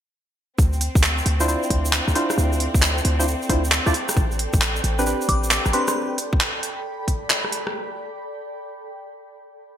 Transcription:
0.58 808-style bass D2, violin section C4, ambient pad A4, kick, shaker
0.73 shaker
0.80 ambient pad D5, open hi-hat
0.95 808-style bass D2, kick, shaker
1.03 clap, shaker
1.18 shaker
1.26 808-style bass D2, open hi-hat
1.40 synth stab D4 E4 F4 C5, shaker
1.48 synth stab D4 E4 F4 C5, ambient pad G5, shaker
1.63 shaker
1.70 808-style bass D2, kick, open hi-hat
1.85 shaker
1.93 ambient pad C6, clap, shaker
2.07 808-style bass D2, cross-stick, shaker
2.15 synth stab D4 E4 F4 C5, open hi-hat
2.30 cross-stick, shaker
2.38 808-style bass D2, shaker
2.53 shaker
2.60 open hi-hat
2.74 808-style bass D2, kick, shaker
2.82 clap, shaker
2.98 shaker
3.05 808-style bass D2, open hi-hat
3.19 synth stab D4 E4 F4 C5, shaker
3.28 shaker
3.42 shaker
3.49 808-style bass D2, synth stab D4 E4 F4 C5, kick, open hi-hat
3.64 shaker
3.72 clap, shaker
3.86 808-style bass D2, synth stab D4 E4 F4 D5, cross-stick, shaker
3.94 open hi-hat
4.09 cross-stick, shaker
4.17 808-style bass A1, kick
4.31 shaker
4.39 open hi-hat
4.53 808-style bass A1, kick, shaker
4.62 clap, shaker
4.76 shaker
4.84 808-style bass A1, open hi-hat
4.99 synth stab C4 D4 G4 B4, shaker
5.06 synth stab C4 D4 G4 B4, shaker
5.21 shaker
5.29 808-style bass A1, synth bell D6, kick, open hi-hat
5.43 shaker
5.51 clap, shaker
5.65 808-style bass A1, cross-stick, shaker
5.73 synth stab C4 D4 G4 B4, synth bell C6, open hi-hat
5.80 ambient pad B5
5.87 synth bell C6, cross-stick, shaker
6.18 open hi-hat
6.33 kick
6.41 clap
6.63 open hi-hat
7.08 kick, open hi-hat
7.30 clap
7.45 cross-stick
7.52 open hi-hat
7.67 cross-stick

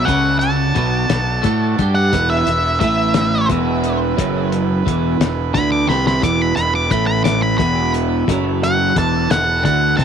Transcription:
Already playing: transistor combo organ F#4 D5
0.05 fingered electric bass C#2, clean electric guitar C#3, transistor combo organ A4, lead electric guitar F#5, kick, closed hi-hat
0.39 lead electric guitar A5, closed hi-hat
0.75 fingered electric bass B1, clean electric guitar B2, kick, closed hi-hat
1.09 fingered electric bass B1, clean electric guitar B2, snare, closed hi-hat
1.43 fingered electric bass A2, clean electric guitar A3, kick, closed hi-hat
1.79 fingered electric bass G2, clean electric guitar G3, kick, closed hi-hat
1.95 lead electric guitar F#5
2.11 fingered electric bass E1, clean electric guitar E2, transistor combo organ E3 B3 B4, kick, closed hi-hat
2.30 lead electric guitar E5
2.47 fingered electric bass E1, clean electric guitar E2, closed hi-hat
2.80 fingered electric bass A1, clean electric guitar A2, lead electric guitar E5, kick, closed hi-hat
3.14 snare, closed hi-hat
3.49 fingered electric bass E1, clean electric guitar E2, kick, closed hi-hat
3.84 closed hi-hat
4.17 fingered electric bass F#1, clean electric guitar F#2, kick, closed hi-hat
4.52 closed hi-hat
4.85 fingered electric bass E1, clean electric guitar E2, kick, closed hi-hat
5.20 fingered electric bass E1, clean electric guitar E2, snare, closed hi-hat
5.54 fingered electric bass D2, clean electric guitar D3, lead electric guitar B5, kick, closed hi-hat
5.72 lead electric guitar D6
5.87 fingered electric bass C2, clean electric guitar C3, lead electric guitar B5, snare
6.07 lead electric guitar B5, snare
6.20 fingered electric bass E1, clean electric guitar E2, lead electric guitar D6, kick, closed hi-hat
6.42 lead electric guitar B5
6.56 fingered electric bass E1, clean electric guitar E2, lead electric guitar B5, closed hi-hat
6.75 lead electric guitar D6
6.91 fingered electric bass A1, clean electric guitar A2, lead electric guitar B5, kick, closed hi-hat
7.07 lead electric guitar B5
7.24 lead electric guitar D6, snare, closed hi-hat
7.42 lead electric guitar B5
7.58 fingered electric bass E1, clean electric guitar E2, lead electric guitar B5, kick, closed hi-hat
7.94 closed hi-hat
8.27 fingered electric bass F#1, clean electric guitar F#2, transistor combo organ A3, kick, closed hi-hat
8.64 lead electric guitar F#5, closed hi-hat
8.96 fingered electric bass E1, clean electric guitar E2, lead electric guitar A5, kick, closed hi-hat
9.30 fingered electric bass E1, clean electric guitar E2, lead electric guitar F#5, snare, closed hi-hat
9.63 fingered electric bass D2, clean electric guitar D3, lead electric guitar F#5, kick, closed hi-hat
9.97 fingered electric bass C2, clean electric guitar C3, lead electric guitar A5, kick, closed hi-hat

